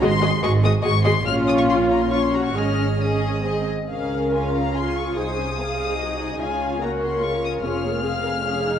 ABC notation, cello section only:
X:1
M:3/4
L:1/8
Q:1/4=145
K:Db
V:1 name="Cello section" clef=bass
A,,2 A,,2 A,,2 | B,,6 | A,,4- A,, z | D,6 |
C,6 | D,6 | F,,6 |]